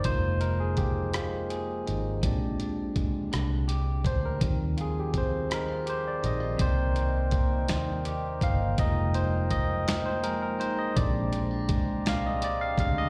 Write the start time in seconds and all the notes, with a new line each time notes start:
Already playing: A#3 D#4 G4
0.04 F1 F3 G#3 A#3 D#4 C5, kick, closed hi-hat
0.41 D#4 A#4, closed hi-hat
0.60 G#4
0.77 A#3 G4, kick, closed hi-hat
1.14 D#4 F4, cross-stick, closed hi-hat
1.50 G#4, closed hi-hat
1.87 G#1 D#4, closed hi-hat
2.23 A#1 A#2 G#3 C4 D4 G4, kick, closed hi-hat
2.60 D4, closed hi-hat
2.96 G#3, kick, closed hi-hat
3.32 C2 D4, cross-stick, closed hi-hat
3.68 G4, closed hi-hat
4.05 D2 D4 C5, kick, closed hi-hat
4.25 A#4
4.41 D#2 D#3 F3 G3 C4, kick, closed hi-hat
4.77 F4 G#4, closed hi-hat
5.00 G4
5.14 C4, kick, closed hi-hat
5.18 C5
5.50 D#4, cross-stick, closed hi-hat
5.54 A#4
5.68 F4
5.86 G4 C5, closed hi-hat
6.08 D5
6.22 A#1 D#4 D#5, closed hi-hat
6.40 F4
6.58 C2 C3 D#3 A#3 D#4 A#4 C5 D5 G5, kick, closed hi-hat
6.95 D#4, closed hi-hat
7.31 A#3, kick, closed hi-hat
7.68 D#2 D#4, snare, closed hi-hat
8.05 G4, closed hi-hat
8.41 G1 D#3 A#3 D#4 F5, kick, closed hi-hat
8.77 F1 F3 G3 G#3 A#3 D#4 D#5 A#5, kick, closed hi-hat
9.14 D#4 C5, closed hi-hat
9.50 A#3 D#5, kick, closed hi-hat
9.87 D#4 A#4, snare, closed hi-hat
10.06 C5
10.23 F3 G#3 A#3 D#4 G#4 A#4, closed hi-hat
10.42 A#4
10.59 G#1 D#4 C5, closed hi-hat
10.79 D#5
10.96 A#1 A#2 G#3 C4 D4 G4 C5 D5, kick, closed hi-hat
11.32 C4, closed hi-hat
11.51 D4
11.68 G#3, kick, closed hi-hat
12.06 C2 D4 F5, snare, closed hi-hat
12.26 D#5
12.42 G4 D5, closed hi-hat
12.61 F5
12.77 D2 G#3 C4 D4 G4 F5, kick, closed hi-hat
12.98 D#5